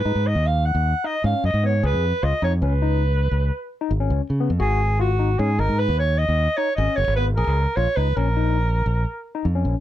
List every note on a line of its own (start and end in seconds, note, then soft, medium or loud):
0.00 0.28 B4 medium
0.05 0.14 G#2 medium
0.05 0.25 D#4 medium
0.15 0.34 G#2 medium
0.27 0.48 D#5 medium
0.35 0.72 D#2 medium
0.46 0.67 F5 medium
0.66 1.07 F#5 medium
0.75 0.93 D#2 medium
1.04 1.14 D#4 medium
1.04 1.24 D#5 medium
1.24 1.33 G#2 medium
1.24 1.44 C#4 medium
1.24 1.43 F5 medium
1.44 1.53 F#2 medium
1.44 1.63 D#5 medium
1.54 1.81 G#2 medium
1.63 1.73 B3 medium
1.63 1.83 C#5 medium
1.83 1.92 C#2 medium
1.83 2.03 G#4 medium
1.83 2.25 B4 medium
1.93 2.11 F2 medium
2.23 2.32 C#2 medium
2.23 2.33 F4 medium
2.23 2.43 D#5 medium
2.42 2.61 F2 medium
2.42 2.52 D#4 medium
2.42 2.52 C#5 medium
2.62 3.27 C#2 medium
2.62 2.72 C#4 medium
2.62 3.77 B4 medium
2.82 3.02 D#4 medium
3.31 3.50 C#2 medium
3.81 3.91 D#4 medium
3.91 4.09 G#1 medium
4.00 4.21 C#4 medium
4.10 4.19 C#2 medium
4.30 4.48 C#3 medium
4.40 4.50 B3 medium
4.50 4.59 F2 medium
4.60 5.35 G#1 loud
4.60 4.80 F#4 medium
4.60 4.97 G#4 medium
4.99 5.09 F4 medium
4.99 5.41 F#4 medium
5.19 5.29 D#4 medium
5.39 5.57 G#2 medium
5.39 5.49 C#4 medium
5.39 5.61 G#4 medium
5.59 5.68 G#1 medium
5.59 5.80 D#4 medium
5.59 5.80 A#4 medium
5.69 5.87 G#2 medium
5.79 5.98 B4 medium
5.89 6.25 D#2 medium
5.99 6.20 C#5 medium
6.18 6.59 D#5 loud
6.29 6.47 D#2 medium
6.57 6.68 D#4 medium
6.57 6.76 C#5 medium
6.76 6.87 G#1 medium
6.76 6.98 C#4 medium
6.76 6.97 D#5 medium
6.96 7.07 F#1 medium
6.96 7.15 C#5 medium
7.07 7.35 G#1 medium
7.16 7.28 B3 medium
7.16 7.25 B4 medium
7.36 7.46 A#1 loud
7.36 7.58 G#4 medium
7.36 7.78 A#4 medium
7.47 7.65 C#2 medium
7.76 7.86 A#1 medium
7.76 7.87 F4 medium
7.76 7.98 C#5 medium
7.96 8.15 C#2 medium
7.96 8.07 D#4 medium
7.96 8.18 B4 medium
8.16 8.82 A#1 medium
8.16 8.27 C#4 medium
8.16 9.35 A#4 medium
8.36 8.57 D#4 medium
8.86 9.04 A#1 medium
9.35 9.45 D#4 medium
9.45 9.63 F2 medium
9.55 9.75 C#4 medium
9.65 9.74 A#1 medium